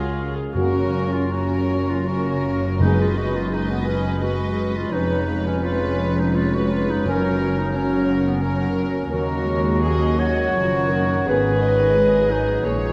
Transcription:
0.00 0.33 C#2 soft
0.00 0.34 C#3 soft
0.00 0.59 C#3 soft
0.00 0.21 G#3 soft
0.00 0.35 G#3 soft
0.00 0.59 G#3 soft
0.00 0.34 C#4 soft
0.00 1.32 C#4 soft
0.00 0.21 F4 soft
0.00 0.35 F4 soft
0.00 0.29 G#4 soft
0.00 0.35 G#4 soft
0.00 0.37 A#4 medium
0.30 0.59 F4 soft
0.30 0.59 G#4 soft
0.36 0.55 G#4 medium
0.54 4.90 F#1 medium
0.54 1.66 F#2 medium
0.54 2.80 F#2 medium
0.54 4.90 F#2 medium
0.54 0.83 A#3 medium
0.54 1.29 C#4 medium
0.54 1.15 F#4 medium
0.54 0.84 F#4 medium
0.54 1.29 A#4 medium
0.54 1.29 C#5 medium
0.82 2.31 C#3 soft
1.08 2.07 A#3 soft
1.13 1.34 F4 medium
1.32 2.06 C#4 medium
1.32 1.82 C#4 soft
1.32 1.91 F#4 medium
1.32 2.07 A#4 medium
1.32 2.08 C#5 medium
1.59 4.97 F#4 soft
1.83 2.84 C#4 soft
1.90 2.10 F4 medium
2.07 2.56 A#3 soft
2.07 2.79 C#4 medium
2.07 2.80 F#4 medium
2.07 2.79 A#4 medium
2.07 2.80 C#5 medium
2.32 2.84 C#3 soft
2.57 2.84 A#3 soft
2.80 3.83 F#2 medium
2.80 4.97 F#2 medium
2.80 3.50 G#3 medium
2.80 3.06 B3 medium
2.80 2.99 D#4 medium
2.80 3.06 G#4 medium
2.80 3.51 B4 medium
2.80 3.50 D#5 medium
3.01 3.19 F4 medium
3.05 4.45 F#3 soft
3.18 3.38 F#4 medium
3.29 4.22 B3 soft
3.37 3.55 F4 medium
3.51 4.21 G#3 medium
3.51 3.99 D#4 soft
3.51 3.72 D#4 medium
3.51 4.22 B4 medium
3.51 4.20 D#5 medium
3.71 3.89 B3 medium
3.77 5.88 G#4 soft
3.88 4.25 C#4 medium
4.00 4.97 D#4 soft
4.21 4.92 G#3 medium
4.21 4.69 B3 soft
4.21 4.78 F#4 medium
4.21 4.91 B4 medium
4.21 4.91 D#5 medium
4.46 4.96 F#3 soft
4.70 5.40 B3 soft
4.77 4.94 F4 medium
4.90 7.02 F1 medium
4.90 7.02 F2 medium
4.90 7.09 F2 medium
4.90 5.63 G#3 medium
4.90 5.18 C#4 medium
4.90 5.46 D#4 medium
4.90 5.62 B4 medium
4.90 5.18 B4 medium
4.90 5.61 C#5 medium
5.18 6.59 F3 soft
5.41 6.36 B3 soft
5.47 5.66 C#4 medium
5.62 6.35 G#3 medium
5.62 6.12 C#4 soft
5.62 6.21 F4 medium
5.62 6.35 B4 medium
5.62 6.32 C#5 medium
5.89 7.09 G#4 soft
6.13 7.74 C#4 soft
6.20 6.37 D#4 medium
6.33 7.04 G#3 medium
6.33 6.82 B3 soft
6.33 6.56 F4 medium
6.33 7.03 C#5 medium
6.37 7.05 B4 medium
6.55 6.73 F#4 medium
6.60 7.09 F3 soft
6.72 6.92 F4 medium
6.83 7.09 B3 soft
6.90 7.07 D#4 medium
7.04 9.07 F#1 medium
7.04 8.03 F#2 medium
7.04 9.07 F#2 medium
7.04 9.14 F#2 medium
7.04 7.72 F#3 medium
7.04 7.30 C#4 medium
7.04 7.61 C#4 medium
7.04 7.72 A#4 medium
7.04 7.30 A#4 medium
7.04 7.72 C#5 medium
7.29 8.65 C#3 soft
7.53 8.42 A#3 soft
7.59 7.77 D#4 medium
7.73 8.41 F#3 medium
7.73 8.20 C#4 medium
7.73 8.12 C#4 medium
7.73 8.41 A#4 medium
7.73 8.39 C#5 medium
7.98 9.82 F#4 medium
8.21 9.56 C#4 soft
8.27 8.43 B3 medium
8.41 9.10 F#3 medium
8.41 8.89 A#3 soft
8.41 8.77 C#4 medium
8.41 9.10 A#4 medium
8.41 9.08 C#5 medium
8.66 9.14 C#3 soft
8.90 9.34 A#3 soft
9.09 10.52 D#2 medium
9.09 11.31 D#3 medium
9.09 9.43 F#3 medium
9.09 9.35 C#4 medium
9.09 10.21 F#4 medium
9.09 9.35 A#4 medium
9.09 9.79 A#4 medium
9.09 9.77 C#5 medium
9.35 10.77 A#3 soft
9.45 9.82 G#3 medium
9.58 10.55 C#4 soft
9.80 10.55 F#3 medium
9.80 10.31 F#4 medium
9.80 10.21 G#4 medium
9.80 10.56 D#5 medium
10.09 11.31 A#4 soft
10.19 11.25 F#4 medium
10.19 11.27 C#5 loud
10.33 11.30 F#4 soft
10.56 11.27 F#1 medium
10.56 11.28 F#2 medium
10.56 10.91 F3 medium
10.56 11.01 C#4 soft
10.56 11.27 A#4 medium
10.79 11.30 A#3 soft
10.91 11.26 D#3 medium
11.02 11.30 C#4 soft
11.26 12.62 G#1 medium
11.26 12.93 G#2 medium
11.26 12.62 G#2 medium
11.26 11.95 D#3 medium
11.26 11.51 B3 medium
11.26 11.52 G#4 medium
11.26 11.97 G#4 medium
11.26 11.63 B4 medium
11.26 12.33 B4 loud
11.51 12.87 D#3 soft
11.62 12.65 D#5 medium
11.74 12.64 G#3 soft
11.97 12.31 G#3 medium
11.97 12.42 D#4 medium
11.97 12.64 G#4 medium
12.20 12.93 G#4 soft
12.29 12.64 F#3 medium
12.29 12.66 D#4 medium
12.43 12.93 D#4 soft
12.64 12.93 A#1 medium
12.64 12.93 A#2 medium
12.64 12.93 F3 medium
12.64 12.93 G#3 soft
12.64 12.93 G#4 medium
12.64 12.93 C#5 medium
12.88 12.93 D#3 soft

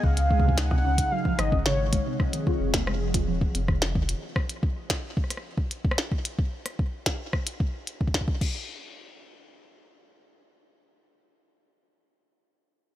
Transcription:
0.03 1.04 C#2 loud
0.03 0.08 C#3 medium
0.03 2.18 C#3 medium
0.03 2.18 G#3 medium
0.03 2.18 D#4 medium
0.03 0.59 F5 loud
0.03 kick loud
0.17 closed hi-hat medium
0.30 0.35 G#3 medium
0.30 kick loud
0.40 kick medium
0.44 0.52 C3 medium
0.49 kick medium
0.57 1.13 F#5 loud
0.57 snare loud
0.57 closed hi-hat medium
0.71 0.79 C3 medium
0.71 kick loud
0.71 cross-stick medium
0.85 0.89 C#4 medium
0.98 kick loud
0.98 closed hi-hat medium
1.11 1.23 F#3 medium
1.11 1.40 F5 loud
1.25 1.37 F3 medium
1.25 kick loud
1.38 1.99 G#1 medium
1.38 1.65 D#5 medium
1.38 cross-stick medium
1.38 closed hi-hat medium
1.52 1.64 C#4 medium
1.52 kick loud
1.65 1.70 C#3 medium
1.65 2.16 C#5 medium
1.65 snare loud
1.93 1.97 G#3 medium
1.93 kick loud
1.93 closed hi-hat medium
2.06 2.14 C3 medium
2.20 4.34 F3 medium
2.20 4.34 C4 medium
2.20 4.34 G#4 medium
2.20 kick loud
2.20 cross-stick medium
2.33 2.41 D#3 medium
2.33 closed hi-hat medium
2.47 2.51 F4 medium
2.47 kick loud
2.60 3.29 F1 medium
2.74 2.85 A#3 medium
2.74 kick loud
2.74 snare loud
2.74 closed hi-hat medium
2.87 2.99 G#3 medium
2.87 cross-stick medium
3.14 3.26 F4 medium
3.14 kick loud
3.14 closed hi-hat medium
3.28 3.45 D#1 medium
3.28 3.32 F3 medium
3.41 kick loud
3.55 4.15 F1 loud
3.55 3.60 C4 medium
3.55 closed hi-hat medium
3.68 3.76 D#3 medium
3.68 kick loud
3.68 cross-stick medium
3.82 snare loud
3.95 4.03 D#3 medium
3.95 kick loud
4.09 4.14 F4 medium
4.09 closed hi-hat medium
4.36 kick loud
4.36 cross-stick medium
4.49 closed hi-hat soft
4.63 kick loud
4.90 kick loud
4.90 snare loud
4.90 closed hi-hat medium
5.17 kick loud
5.24 cross-stick soft
5.30 cross-stick soft
5.30 closed hi-hat medium
5.37 cross-stick soft
5.58 kick loud
5.71 closed hi-hat medium
5.85 kick loud
5.91 cross-stick medium
5.98 snare loud
6.12 kick loud
6.25 closed hi-hat medium
6.39 kick loud
6.66 cross-stick soft
6.66 closed hi-hat soft
6.79 kick loud
7.06 kick loud
7.06 snare loud
7.06 closed hi-hat medium
7.33 kick loud
7.33 cross-stick medium
7.47 closed hi-hat medium
7.60 kick loud
7.87 closed hi-hat soft
8.01 kick loud
8.07 kick medium
8.14 kick medium
8.14 cross-stick soft
8.14 snare loud
8.21 kick medium
8.28 kick loud
8.41 kick loud
8.41 crash medium

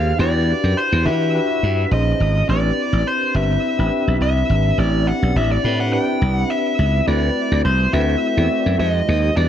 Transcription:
0.00 0.12 D#2 loud
0.00 0.22 D#4 medium
0.00 0.22 F4 medium
0.00 0.20 G4 medium
0.00 0.21 G#4 medium
0.00 0.22 C5 medium
0.00 0.20 F5 medium
0.19 0.52 E2 loud
0.19 0.86 D4 medium
0.19 0.86 E4 medium
0.19 0.86 F#4 medium
0.19 0.86 G4 medium
0.19 0.86 B4 medium
0.19 0.79 D5 medium
0.64 0.74 F#2 medium
0.77 1.07 C5 medium
0.92 1.07 E2 loud
1.05 1.39 E3 loud
1.05 1.28 D4 medium
1.05 1.28 E4 medium
1.05 1.28 F#4 medium
1.05 1.28 G4 medium
1.05 1.28 B4 medium
1.05 1.92 E5 medium
1.34 1.91 D4 medium
1.34 1.92 E4 medium
1.34 1.92 F#4 medium
1.34 1.92 G4 medium
1.34 1.92 B4 medium
1.63 1.84 G2 medium
1.91 2.13 A#1 loud
1.91 2.38 C#4 medium
1.91 2.38 D#4 medium
1.91 2.38 F4 medium
1.91 2.39 G#4 medium
1.91 2.39 C5 medium
1.91 2.49 D#5 medium
2.20 2.42 G#1 medium
2.48 2.70 A1 loud
2.48 3.15 C4 medium
2.48 3.15 D4 medium
2.48 3.15 E4 medium
2.48 3.15 G4 medium
2.48 3.15 B4 medium
2.48 3.08 D5 medium
2.93 3.03 A1 loud
3.07 3.36 C5 medium
3.34 3.56 G1 loud
3.34 3.68 C4 medium
3.34 3.68 D4 medium
3.34 3.68 E4 medium
3.34 3.68 G4 medium
3.34 3.68 B4 medium
3.34 4.17 E5 medium
3.79 3.89 A1 medium
3.79 4.54 C4 medium
3.79 4.54 D4 medium
3.79 4.55 E4 medium
3.79 4.55 G4 medium
3.79 4.55 B4 medium
4.08 4.17 B1 medium
4.21 4.42 C2 medium
4.21 4.79 E5 loud
4.50 4.71 G#1 loud
4.78 5.11 A1 medium
4.78 5.44 C4 medium
4.78 5.44 D4 medium
4.78 5.44 E4 medium
4.78 5.44 G4 medium
4.78 5.45 D5 medium
4.78 5.08 D5 medium
5.07 5.37 F#5 medium
5.22 5.32 B1 medium
5.36 5.57 A1 medium
5.36 5.51 E5 medium
5.51 5.78 D5 medium
5.63 5.97 A2 loud
5.63 5.86 C4 medium
5.63 5.86 D4 medium
5.63 5.86 E4 medium
5.63 5.86 G4 medium
5.63 5.87 B4 medium
5.80 5.92 F#5 loud
5.92 6.80 C4 medium
5.92 6.80 D4 medium
5.92 6.80 E4 medium
5.92 6.80 G4 medium
5.92 6.80 B4 medium
5.92 6.35 G5 loud
6.22 6.43 C2 medium
6.35 6.52 F#5 loud
6.50 7.07 E5 medium
6.79 7.00 C#2 loud
7.07 7.29 D2 loud
7.07 7.73 A3 medium
7.07 7.73 C4 medium
7.07 7.73 E4 medium
7.07 7.74 F#4 medium
7.07 7.74 B4 medium
7.07 7.61 D5 medium
7.52 7.61 D2 loud
7.65 7.86 C2 medium
7.65 7.94 C5 medium
7.92 8.15 D2 loud
7.92 8.26 A3 medium
7.92 8.26 C4 medium
7.92 8.26 E4 medium
7.92 8.26 F#4 medium
7.92 8.27 B4 medium
7.92 8.79 E5 loud
8.37 8.47 E2 medium
8.37 8.79 A3 medium
8.37 8.79 C4 medium
8.37 8.79 E4 medium
8.37 8.80 F#4 medium
8.37 8.80 D5 medium
8.66 8.76 F#2 medium
8.79 9.01 F2 medium
8.79 9.26 G#3 medium
8.79 9.26 D#4 medium
8.79 9.26 F4 medium
8.79 9.26 G4 medium
8.79 9.26 C5 medium
8.79 8.90 E5 medium
8.90 9.36 D#5 medium
9.08 9.30 D#2 medium
9.36 9.49 E2 loud
9.36 9.49 G3 medium
9.36 9.49 D4 medium
9.36 9.49 E4 medium
9.36 9.49 F#4 medium
9.36 9.49 B4 medium
9.36 9.49 D5 medium

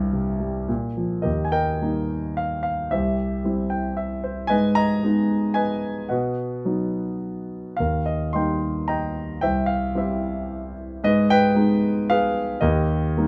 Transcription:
0.00 0.67 C2 medium
0.00 0.67 G2 soft
0.00 0.66 D#4 medium
0.00 0.66 G4 medium
0.00 0.65 A#4 medium
0.13 0.68 C3 medium
0.40 0.68 G3 medium
0.68 1.25 A#2 medium
0.97 1.25 F3 soft
1.22 2.87 D#2 soft
1.22 2.06 G4 soft
1.22 1.50 A#4 soft
1.22 1.46 D#5 medium
1.44 1.53 G#5 medium
1.52 2.33 A#4 medium
1.52 2.34 D#5 medium
1.52 2.40 G5 medium
1.82 2.88 G3 soft
1.82 2.88 A#3 soft
1.82 2.89 D#4 soft
2.37 2.61 F5 medium
2.63 2.92 F5 medium
2.91 4.46 C2 medium
2.91 3.94 G4 soft
2.91 3.94 C5 soft
2.91 3.93 E5 medium
3.44 4.47 G3 soft
3.44 4.47 C4 soft
3.44 4.47 E4 soft
3.70 3.95 G5 medium
3.97 4.22 E5 medium
4.24 4.48 C5 medium
4.47 6.07 G#2 medium
4.47 5.25 B4 medium
4.47 4.75 D#5 medium
4.47 4.76 G#5 medium
4.75 5.53 D#5 medium
4.75 5.58 A#5 loud
5.03 6.08 G#3 soft
5.03 6.08 B3 soft
5.03 6.08 D#4 medium
5.54 6.06 B4 medium
5.54 6.06 D#5 medium
5.54 6.11 G#5 medium
6.09 7.75 B2 medium
6.09 7.17 B4 soft
6.09 7.17 D#5 medium
6.09 7.17 F#5 medium
6.65 7.75 F#3 soft
6.65 7.75 B3 soft
6.65 7.75 D#4 soft
7.77 9.39 D#2 medium
7.77 8.59 A#4 soft
7.77 8.03 F5 medium
8.06 8.33 D#5 medium
8.33 9.40 G3 soft
8.33 9.40 A#3 soft
8.33 9.40 D#4 soft
8.33 8.87 D#5 soft
8.33 8.87 G5 soft
8.33 8.90 C6 medium
8.88 9.39 D#5 medium
8.88 9.39 G5 medium
8.88 9.44 A#5 medium
9.41 10.99 C2 medium
9.41 9.96 C5 medium
9.41 9.96 E5 medium
9.41 9.70 G5 medium
9.66 9.95 F5 medium
9.95 10.99 G3 soft
9.95 10.99 C4 soft
9.95 10.99 E4 soft
9.95 10.73 G4 soft
9.95 10.73 C5 soft
9.95 10.73 E5 medium
11.04 12.58 G#2 medium
11.04 11.79 G#4 medium
11.04 11.30 B4 medium
11.04 11.28 D#5 medium
11.30 12.05 B4 medium
11.30 12.05 D#5 medium
11.30 12.11 G5 loud
11.55 12.59 G#3 soft
11.55 12.59 B3 soft
11.55 12.59 D#4 medium
12.10 12.59 G#4 medium
12.10 12.59 B4 medium
12.10 12.64 F5 loud
12.61 13.28 D#2 medium
12.61 13.28 G4 medium
12.61 13.28 A#4 medium
12.61 13.28 D#5 medium
13.17 13.28 G3 soft
13.17 13.28 A#3 soft
13.17 13.28 D#4 medium

